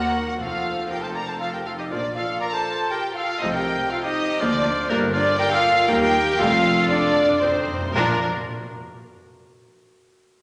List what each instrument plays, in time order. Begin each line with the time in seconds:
Already playing: cello section D#2, double bass section D#2, viola section A#3, french horn section F#4, violin section F#4 F#5, oboe A#4, clarinet A#4, flute F#5
0.26 french horn section F#4, violin section F#4 F#5, oboe A#4, flute F#5
0.39 double bass section F1, cello section F2, timpani F2, viola section F3 A3, violin section F4 F5, french horn section F4, oboe A4, clarinet A4, flute F5
0.89 violin section G4 G5, french horn section G4, oboe A#4, flute G5
1.01 violin section A4 A5, french horn section A4, oboe C5, flute A5
1.14 violin section A#4 A#5, french horn section A#4, oboe D5, flute A#5
1.27 violin section A4 A5, french horn section A4, oboe C5, flute A5
1.39 violin section F4 F5, french horn section F4, oboe A4, flute F5
1.52 french horn section G4, violin section G4 G5, oboe A#4, flute G5
1.66 french horn section F4, violin section F4 F5, oboe A4, flute F5
1.77 violin section D#4 D#5, french horn section D#4, oboe G4, flute D#5
1.90 double bass section A#1, cello section A#2, viola section F3 A#3, violin section D4 D5, french horn section D4, clarinet F4, oboe F4, flute D5
2.15 french horn section F4, violin section F4 F5, oboe A4, flute F5
2.40 french horn section A#4, violin section A#4 A#5, oboe D5, flute A#5
2.53 french horn section A4, violin section A4 A5, oboe C5, flute A5
2.91 violin section G4 G5, french horn section G4, oboe A#4, flute G5
3.15 violin section F4 F5, french horn section F4, oboe A4, flute F5
3.40 double bass section C2, cello section C3, viola section F3 A3, violin section D#4 D#5, french horn section D#4, oboe A4, clarinet C5, flute D#5
3.52 violin section G4 G5, french horn section G4, oboe A#4, flute G5
3.89 violin section F4 F5, french horn section F4, oboe A4, flute F5
4.03 violin section D#4 D#5, french horn section D#4, oboe G4, flute D#5
4.40 double bass section D2, cello section D3, viola section F3 A#3, violin section D4 D5, french horn section D4, oboe F4, flute D5
4.89 double bass section G1, cello section G2, viola section G3 A#3, violin section A#3 A#4, french horn section A#3, oboe D4, flute A#4
5.13 french horn section D4, violin section D4 D5, oboe F4, flute D5
5.38 french horn section G4, violin section G4 G5, oboe A#4, clarinet A#4, flute G5
5.51 french horn section F4, violin section F4 F5, oboe A4, flute F5
5.88 double bass section D#2, cello section D#2, viola section G3 A#3, french horn section G4, violin section G4 G5, oboe A#4, flute G5
6.01 french horn section G4, violin section G4 G5, oboe A#4, flute G5
6.38 double bass section F1, timpani F2, cello section F2, viola section G3 A3, french horn section F4, violin section F4 F5, oboe A4, clarinet A4, flute F5
6.47 timpani F2
6.55 timpani F2
6.63 timpani F2
6.70 timpani F2
6.78 timpani F2
6.86 timpani F2, french horn section D4, violin section D4 D5, oboe F4, flute D5
7.01 timpani F2
7.09 timpani F2
7.17 timpani F2
7.24 timpani F2
7.32 timpani F2
7.40 timpani F2, french horn section C4, violin section C4 C5, oboe D#4, clarinet A4, flute C5
7.48 timpani F2
7.56 timpani F2
7.64 timpani F2
7.72 timpani F2
7.80 timpani F2
7.88 timpani F2
7.94 double bass section A#1, cello section A#2, timpani A#2, viola section F3 D4, french horn section A#3, violin section A#3 A#4, oboe D4, clarinet F4, flute A#5